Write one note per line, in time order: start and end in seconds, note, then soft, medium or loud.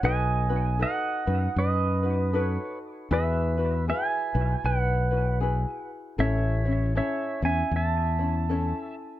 0.03 0.84 B1 medium
0.03 0.50 D#4 medium
0.03 0.49 F#4 medium
0.03 0.49 A4 medium
0.03 0.48 B4 medium
0.03 0.77 D#5 medium
0.03 0.82 G#5 loud
0.49 0.78 D#4 soft
0.49 0.79 F#4 medium
0.49 0.78 B4 medium
0.79 1.27 D#4 medium
0.79 1.26 F#4 medium
0.79 1.26 A4 medium
0.79 1.25 B4 medium
0.79 1.54 D#5 medium
0.79 1.60 F#5 loud
1.27 1.47 F#2 medium
1.27 2.04 D#4 soft
1.27 2.04 F#4 soft
1.27 2.03 B4 soft
1.56 2.56 F#2 medium
1.56 2.78 B4 medium
1.56 2.41 D#5 medium
2.03 2.33 D#4 soft
2.03 2.33 F#4 soft
2.03 2.33 B4 medium
2.33 3.11 D#4 medium
2.33 3.11 F#4 medium
2.33 3.10 A4 medium
2.33 3.10 B4 medium
2.41 2.78 C#5 medium
3.11 3.91 E2 medium
3.11 3.58 E4 medium
3.11 3.57 F#4 medium
3.11 3.57 G#4 medium
3.11 3.56 B4 medium
3.11 3.84 B4 medium
3.11 3.89 E5 medium
3.57 3.87 E4 soft
3.57 3.88 F#4 soft
3.57 3.87 B4 medium
3.88 4.35 E4 medium
3.88 4.35 F#4 medium
3.88 4.34 G#4 medium
3.88 4.33 B4 medium
3.88 4.62 E5 medium
3.88 4.65 G#5 loud
4.34 4.54 B1 medium
4.34 5.12 E4 soft
4.34 5.11 F#4 soft
4.34 5.10 B4 medium
4.64 5.64 B1 medium
4.64 5.38 B4 medium
4.64 5.38 F#5 medium
5.11 5.40 E4 soft
5.11 5.41 F#4 soft
5.11 5.40 B4 soft
5.40 6.19 E4 medium
5.40 6.18 F#4 medium
5.40 6.18 G#4 medium
5.40 6.18 B4 medium
6.18 6.99 A1 medium
6.18 6.66 C#4 medium
6.18 6.65 E4 medium
6.18 6.65 A4 medium
6.18 6.64 C#5 medium
6.18 6.93 C#5 medium
6.18 6.96 E5 medium
6.65 6.94 C#4 soft
6.65 6.95 E4 soft
6.65 6.95 C#5 medium
6.95 7.43 C#4 medium
6.95 7.42 E4 medium
6.95 7.43 A4 medium
6.95 7.41 C#5 medium
6.95 7.40 C#5 medium
6.95 7.45 E5 medium
7.42 7.62 E2 medium
7.42 8.20 C#4 soft
7.42 8.19 E4 soft
7.42 8.18 C#5 medium
7.42 7.75 G#5 medium
7.46 7.72 E5 medium
7.71 8.72 E2 medium
7.76 8.95 E5 medium
7.76 8.95 A5 medium
8.19 8.49 C#4 soft
8.19 8.49 E4 soft
8.19 8.49 C#5 soft
8.49 9.20 C#4 medium
8.49 9.20 E4 medium
8.49 9.20 A4 medium
8.49 9.20 C#5 medium